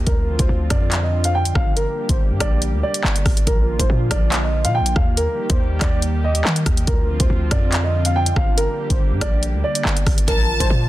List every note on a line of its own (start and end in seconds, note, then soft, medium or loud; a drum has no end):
0.07 0.38 D2 loud
0.07 3.44 D3 medium
0.07 1.75 F3 medium
0.07 1.75 C4 medium
0.07 1.75 F4 medium
0.07 0.37 A#4 medium
0.07 kick loud
0.07 closed hi-hat medium
0.39 0.49 D2 loud
0.39 0.48 C5 medium
0.39 kick medium
0.39 closed hi-hat medium
0.49 0.70 D2 loud
0.70 1.52 F2 loud
0.70 1.01 D5 medium
0.70 kick medium
0.70 cross-stick medium
0.70 closed hi-hat medium
0.92 clap loud
0.92 closed hi-hat medium
1.03 1.22 D#5 medium
1.24 1.34 F5 medium
1.24 closed hi-hat medium
1.35 1.54 G5 medium
1.45 closed hi-hat medium
1.55 1.87 G1 loud
1.55 1.75 F5 medium
1.55 kick loud
1.55 cross-stick medium
1.76 3.45 G3 medium
1.76 3.45 A#3 medium
1.76 3.45 G4 medium
1.76 2.07 A#4 loud
1.76 closed hi-hat medium
2.09 2.32 G1 loud
2.09 2.18 C5 medium
2.09 kick loud
2.09 closed hi-hat medium
2.31 2.40 G2 loud
2.40 2.75 A#1 loud
2.40 2.60 D5 medium
2.40 kick medium
2.40 cross-stick loud
2.40 closed hi-hat medium
2.62 closed hi-hat medium
2.73 2.83 D2 loud
2.83 3.43 D5 medium
2.94 closed hi-hat medium
3.04 3.25 G1 loud
3.04 clap loud
3.16 closed hi-hat medium
3.26 3.46 G1 loud
3.26 kick loud
3.26 cross-stick medium
3.26 open hi-hat medium
3.37 closed hi-hat medium
3.47 3.70 A#1 loud
3.47 5.15 D3 medium
3.47 5.15 F3 medium
3.47 6.84 A#3 medium
3.47 5.15 F4 medium
3.47 3.78 A#4 loud
3.47 kick loud
3.47 closed hi-hat medium
3.68 3.79 A1 loud
3.79 3.89 A#1 loud
3.79 3.88 C5 medium
3.79 kick loud
3.79 closed hi-hat medium
3.90 4.10 A#2 loud
4.11 4.66 A#1 loud
4.11 4.41 D5 medium
4.11 kick loud
4.11 cross-stick loud
4.11 closed hi-hat medium
4.32 clap loud
4.32 closed hi-hat medium
4.43 4.62 D#5 medium
4.65 4.82 A#2 loud
4.65 4.74 F5 medium
4.65 closed hi-hat medium
4.75 4.94 G5 medium
4.80 4.95 A#1 loud
4.86 closed hi-hat medium
4.96 5.27 D#2 loud
4.96 5.15 F5 medium
4.96 kick loud
4.96 cross-stick medium
5.17 6.86 D#3 medium
5.17 6.86 G3 medium
5.17 6.86 G4 medium
5.17 5.48 A#4 loud
5.17 closed hi-hat medium
5.50 5.80 D#2 loud
5.50 5.59 C5 medium
5.50 kick loud
5.50 closed hi-hat medium
5.81 6.42 D#2 loud
5.81 6.00 D5 medium
5.81 kick medium
5.81 cross-stick loud
5.81 clap medium
5.81 closed hi-hat medium
6.02 closed hi-hat medium
6.24 6.84 D#5 medium
6.35 closed hi-hat medium
6.45 6.65 D#3 loud
6.45 clap loud
6.56 closed hi-hat medium
6.66 6.87 D#2 loud
6.66 kick loud
6.66 cross-stick medium
6.66 closed hi-hat medium
6.77 closed hi-hat medium
6.87 7.19 D2 loud
6.87 10.89 D3 medium
6.87 8.56 F3 medium
6.87 8.56 C4 medium
6.87 8.56 F4 loud
6.87 7.18 A#4 medium
6.87 kick loud
6.87 closed hi-hat medium
7.20 7.30 D2 loud
7.20 7.29 C5 medium
7.20 kick loud
7.20 closed hi-hat medium
7.30 7.50 D2 loud
7.51 8.33 F2 loud
7.51 7.82 D5 medium
7.51 kick medium
7.51 cross-stick loud
7.51 closed hi-hat medium
7.72 clap loud
7.72 closed hi-hat medium
7.84 8.03 D#5 medium
8.05 8.14 F5 medium
8.05 closed hi-hat medium
8.16 8.35 G5 medium
8.26 closed hi-hat medium
8.36 8.68 G1 loud
8.36 8.56 F5 medium
8.36 kick loud
8.36 cross-stick loud
8.57 10.26 G3 medium
8.57 10.26 A#3 medium
8.57 10.26 G4 medium
8.57 8.88 A#4 loud
8.57 closed hi-hat medium
8.90 9.13 G1 loud
8.90 8.99 C5 medium
8.90 kick loud
8.90 closed hi-hat medium
9.11 9.21 G2 loud
9.21 9.55 A#1 loud
9.21 9.41 D5 medium
9.21 kick loud
9.21 cross-stick loud
9.21 closed hi-hat medium
9.43 closed hi-hat medium
9.54 9.63 D2 loud
9.64 10.24 D5 medium
9.75 closed hi-hat medium
9.85 10.06 G1 loud
9.85 clap loud
9.97 closed hi-hat medium
10.07 10.27 G1 loud
10.07 kick loud
10.07 cross-stick medium
10.07 open hi-hat medium
10.18 closed hi-hat medium
10.28 10.50 A#1 loud
10.28 10.89 F3 medium
10.28 10.89 A#3 medium
10.28 10.89 F4 medium
10.28 10.58 A#4 medium
10.28 10.88 A5 loud
10.28 kick loud
10.28 closed hi-hat medium
10.49 10.60 A1 loud
10.60 10.70 A#1 loud
10.60 10.69 C5 medium
10.60 kick medium
10.60 closed hi-hat medium
10.70 10.89 A#2 loud